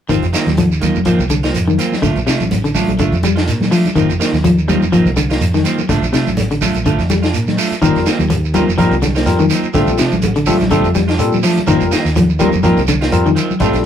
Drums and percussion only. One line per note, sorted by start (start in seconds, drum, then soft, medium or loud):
0.09 kick medium
0.09 closed hi-hat medium
0.09 shekere medium
0.22 kick medium
0.22 closed hi-hat soft
0.22 shekere soft
0.33 snare medium
0.33 closed hi-hat soft
0.33 shekere medium
0.46 snare soft
0.46 closed hi-hat soft
0.46 high conga medium
0.46 shekere soft
0.57 closed hi-hat medium
0.57 high conga medium
0.57 shekere medium
0.72 shekere soft
0.81 kick medium
0.81 closed hi-hat medium
0.81 high conga medium
0.81 shekere medium
0.95 high conga medium
0.95 shekere soft
1.05 kick medium
1.05 closed hi-hat medium
1.05 shekere medium
1.19 kick medium
1.19 closed hi-hat soft
1.19 shekere soft
1.30 kick medium
1.30 closed hi-hat soft
1.30 high conga medium
1.30 shekere medium
1.43 snare medium
1.43 closed hi-hat soft
1.43 shekere soft
1.54 closed hi-hat medium
1.54 shekere medium
1.68 high conga medium
1.68 shekere soft
1.79 closed hi-hat medium
1.79 shekere medium
1.92 snare soft
1.92 high conga medium
1.92 shekere soft
2.02 kick medium
2.02 snare soft
2.02 closed hi-hat medium
2.02 shekere medium
2.16 kick medium
2.16 closed hi-hat soft
2.16 shekere soft
2.27 snare medium
2.27 closed hi-hat soft
2.27 shekere medium
2.40 closed hi-hat soft
2.40 high conga medium
2.40 shekere soft
2.51 closed hi-hat medium
2.51 high conga medium
2.51 shekere medium
2.64 closed hi-hat soft
2.64 shekere soft
2.75 kick medium
2.75 open hi-hat medium
2.75 high conga medium
2.75 shekere medium
2.88 closed hi-hat soft
2.88 high conga medium
2.88 shekere soft
2.99 kick medium
2.99 closed hi-hat medium
2.99 shekere medium
3.12 kick medium
3.12 closed hi-hat soft
3.12 shekere soft
3.23 kick medium
3.23 closed hi-hat soft
3.23 high conga medium
3.23 shekere medium
3.36 snare medium
3.36 closed hi-hat soft
3.36 shekere soft
3.47 snare soft
3.47 closed hi-hat medium
3.47 shekere medium
3.61 snare soft
3.61 high conga medium
3.61 shekere soft
3.72 open hi-hat medium
3.72 shekere medium
3.85 closed hi-hat soft
3.85 high conga medium
3.85 shekere soft
3.96 kick medium
3.96 closed hi-hat medium
3.96 shekere medium
4.09 kick medium
4.09 closed hi-hat soft
4.09 shekere soft
4.21 snare medium
4.21 closed hi-hat soft
4.21 shekere medium
4.34 snare soft
4.34 closed hi-hat soft
4.34 high conga medium
4.34 shekere soft
4.44 closed hi-hat medium
4.44 high conga medium
4.44 shekere medium
4.58 shekere soft
4.69 kick medium
4.69 closed hi-hat soft
4.69 high conga medium
4.69 shekere medium
4.82 high conga medium
4.82 shekere soft
4.93 kick medium
4.93 closed hi-hat medium
4.93 shekere medium
5.06 kick medium
5.06 closed hi-hat soft
5.06 shekere soft
5.17 kick medium
5.17 closed hi-hat medium
5.17 high conga medium
5.17 shekere medium
5.30 snare medium
5.30 closed hi-hat soft
5.30 shekere soft
5.41 closed hi-hat medium
5.41 shekere medium
5.54 snare soft
5.54 high conga medium
5.54 shekere soft
5.65 closed hi-hat medium
5.65 shekere medium
5.78 high conga medium
5.78 shekere soft
5.89 kick medium
5.89 snare soft
5.89 closed hi-hat medium
5.89 shekere medium
6.02 kick medium
6.02 closed hi-hat soft
6.02 shekere soft
6.14 snare medium
6.14 closed hi-hat medium
6.14 shekere medium
6.27 closed hi-hat soft
6.27 high conga medium
6.27 shekere soft
6.37 closed hi-hat medium
6.37 high conga medium
6.37 shekere medium
6.51 closed hi-hat soft
6.51 shekere soft
6.61 kick medium
6.61 open hi-hat medium
6.61 high conga medium
6.61 shekere medium
6.74 closed hi-hat soft
6.74 shekere soft
6.86 kick medium
6.86 closed hi-hat medium
6.86 shekere medium
6.99 kick medium
6.99 snare soft
6.99 closed hi-hat soft
6.99 shekere soft
7.10 kick medium
7.10 snare soft
7.10 closed hi-hat soft
7.10 high conga medium
7.10 shekere medium
7.23 snare medium
7.23 closed hi-hat soft
7.23 shekere soft
7.34 closed hi-hat medium
7.34 shekere medium
7.47 snare soft
7.47 high conga medium
7.47 shekere soft
7.58 open hi-hat medium
7.58 shekere medium
7.71 closed hi-hat soft
7.71 shekere soft
7.82 kick medium
7.82 closed hi-hat medium
7.82 shekere medium
7.95 kick medium
7.95 snare soft
7.95 closed hi-hat soft
7.95 shekere soft
8.06 snare medium
8.06 closed hi-hat soft
8.06 shekere medium
8.19 closed hi-hat soft
8.19 high conga medium
8.19 shekere soft
8.30 closed hi-hat medium
8.30 high conga medium
8.30 shekere medium
8.44 shekere soft
8.54 kick medium
8.54 closed hi-hat soft
8.54 high conga medium
8.54 shekere medium
8.69 shekere soft
8.78 kick medium
8.78 closed hi-hat medium
8.78 shekere medium
8.91 kick medium
8.91 closed hi-hat soft
8.91 shekere soft
9.02 kick medium
9.02 snare soft
9.02 closed hi-hat soft
9.02 high conga medium
9.02 shekere medium
9.15 snare medium
9.15 closed hi-hat soft
9.15 shekere soft
9.26 snare soft
9.26 closed hi-hat medium
9.26 shekere medium
9.39 high conga medium
9.39 shekere soft
9.50 closed hi-hat medium
9.50 shekere medium
9.63 shekere soft
9.74 kick medium
9.74 snare soft
9.74 closed hi-hat medium
9.74 shekere medium
9.87 kick medium
9.87 closed hi-hat soft
9.87 shekere soft
9.98 snare medium
9.98 closed hi-hat medium
9.98 shekere medium
10.12 closed hi-hat soft
10.12 high conga medium
10.12 shekere soft
10.22 closed hi-hat medium
10.22 high conga loud
10.22 shekere medium
10.36 closed hi-hat soft
10.36 shekere soft
10.46 kick medium
10.46 open hi-hat medium
10.46 high conga medium
10.46 shekere medium
10.60 snare soft
10.60 closed hi-hat soft
10.60 high conga medium
10.60 shekere soft
10.70 kick medium
10.70 closed hi-hat medium
10.70 shekere medium
10.84 kick medium
10.84 closed hi-hat soft
10.84 shekere soft
10.95 kick medium
10.95 snare soft
10.95 closed hi-hat soft
10.95 high conga medium
10.95 shekere medium
11.08 snare medium
11.08 closed hi-hat soft
11.08 shekere soft
11.19 closed hi-hat medium
11.19 shekere medium
11.32 high conga medium
11.32 shekere soft
11.43 open hi-hat medium
11.43 shekere medium
11.57 closed hi-hat soft
11.57 high conga medium
11.57 shekere soft
11.67 kick medium
11.67 closed hi-hat medium
11.67 shekere medium
11.81 kick medium
11.81 closed hi-hat soft
11.81 shekere soft
11.92 snare medium
11.92 closed hi-hat medium
11.92 shekere medium
12.05 snare soft
12.05 closed hi-hat soft
12.05 shekere soft
12.16 closed hi-hat medium
12.16 high conga medium
12.16 shekere medium
12.29 shekere soft
12.40 kick medium
12.40 closed hi-hat soft
12.40 high conga medium
12.40 shekere medium
12.53 high conga medium
12.53 shekere soft
12.63 kick medium
12.63 closed hi-hat medium
12.63 shekere medium
12.77 kick medium
12.77 closed hi-hat soft
12.77 shekere soft
12.88 kick medium
12.88 closed hi-hat soft
12.88 high conga medium
12.88 shekere medium
13.01 snare medium
13.01 closed hi-hat soft
13.01 shekere soft
13.12 closed hi-hat medium
13.12 shekere medium
13.26 high conga medium
13.26 shekere soft
13.36 closed hi-hat medium
13.36 shekere medium
13.50 high conga medium
13.50 shekere soft
13.60 kick medium
13.60 snare soft
13.60 closed hi-hat medium
13.60 shekere medium
13.73 kick medium
13.73 snare soft
13.73 closed hi-hat soft
13.73 shekere soft